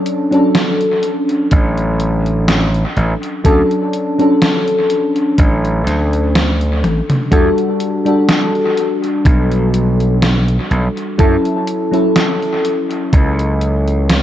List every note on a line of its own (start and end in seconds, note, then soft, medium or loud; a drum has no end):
0.00 0.26 F#3 loud
0.00 0.26 C#4 loud
0.00 0.26 D4 loud
0.00 0.27 A4 loud
0.06 closed hi-hat medium
0.31 3.39 F#3 medium
0.31 3.39 C#4 medium
0.31 3.40 D4 medium
0.31 3.41 A4 loud
0.31 closed hi-hat soft
0.55 snare loud
0.55 closed hi-hat medium
0.81 closed hi-hat soft
1.03 closed hi-hat medium
1.29 closed hi-hat soft
1.51 2.83 A1 loud
1.51 kick loud
1.51 closed hi-hat medium
1.77 closed hi-hat soft
2.00 closed hi-hat medium
2.26 closed hi-hat soft
2.48 snare loud
2.48 closed hi-hat medium
2.74 closed hi-hat soft
2.97 3.13 A1 medium
2.97 closed hi-hat soft
3.23 closed hi-hat soft
3.44 3.61 D2 loud
3.44 4.13 F#3 loud
3.44 4.13 C#4 medium
3.44 4.13 D4 loud
3.44 4.13 A4 loud
3.44 kick loud
3.44 closed hi-hat loud
3.71 closed hi-hat soft
3.93 closed hi-hat medium
4.18 7.26 F#3 medium
4.18 7.27 C#4 medium
4.18 7.27 D4 medium
4.18 7.28 A4 loud
4.18 closed hi-hat soft
4.42 snare loud
4.42 closed hi-hat medium
4.68 closed hi-hat soft
4.90 closed hi-hat medium
5.16 closed hi-hat soft
5.38 5.86 A1 loud
5.38 kick loud
5.38 closed hi-hat medium
5.65 closed hi-hat soft
5.87 6.83 D2 medium
5.87 snare soft
5.87 closed hi-hat medium
6.13 closed hi-hat soft
6.35 snare loud
6.35 closed hi-hat medium
6.61 closed hi-hat soft
6.83 7.00 A1 loud
6.83 closed hi-hat soft
6.83 high tom medium
7.10 closed hi-hat soft
7.10 mid tom medium
7.31 7.48 E2 loud
7.31 8.00 G3 loud
7.31 8.00 D4 medium
7.31 8.00 F#4 loud
7.31 8.00 A4 loud
7.31 kick loud
7.31 closed hi-hat loud
7.58 closed hi-hat soft
7.80 closed hi-hat medium
8.05 11.13 G3 medium
8.05 11.14 D4 medium
8.05 11.14 F#4 medium
8.05 11.15 A4 loud
8.05 closed hi-hat soft
8.29 snare loud
8.29 closed hi-hat loud
8.55 closed hi-hat soft
8.77 closed hi-hat medium
9.04 closed hi-hat soft
9.25 10.57 B1 loud
9.25 kick loud
9.25 closed hi-hat loud
9.52 closed hi-hat soft
9.74 closed hi-hat medium
10.00 closed hi-hat soft
10.22 snare loud
10.22 closed hi-hat loud
10.48 closed hi-hat soft
10.71 10.87 B1 medium
10.71 closed hi-hat soft
10.97 closed hi-hat soft
11.18 11.35 F#2 medium
11.18 11.87 F#3 loud
11.18 11.87 C#4 loud
11.18 11.87 E4 medium
11.18 11.88 A4 loud
11.18 kick loud
11.18 closed hi-hat loud
11.45 closed hi-hat soft
11.67 closed hi-hat medium
11.91 14.23 F#3 medium
11.91 14.23 C#4 medium
11.91 14.23 E4 medium
11.91 14.23 A4 loud
11.91 closed hi-hat soft
12.16 snare loud
12.16 closed hi-hat loud
12.42 closed hi-hat soft
12.65 closed hi-hat medium
12.90 closed hi-hat soft
13.13 14.23 C#2 medium
13.13 kick loud
13.13 closed hi-hat loud
13.39 closed hi-hat soft
13.61 closed hi-hat medium
13.88 closed hi-hat soft
14.10 snare loud
14.10 closed hi-hat loud